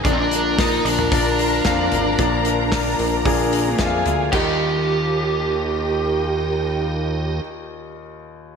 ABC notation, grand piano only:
X:1
M:4/4
L:1/8
Q:1/4=112
K:Eb
V:1 name="Grand piano"
[B,DFd]2 [B,DFd]2 [B,DFd]2 [B,DFf]2 | [B,DFd]2 [B,DFB]2 [B,DFA]2 [B,DF_f=f]2 | [G,Fe]8- | [G,Fe]8 |]
V:2 name="Grand piano" clef=bass
[B,,F,]3 z4 z | [B,,F,]3 z4 z | E,,8- | E,,8 |]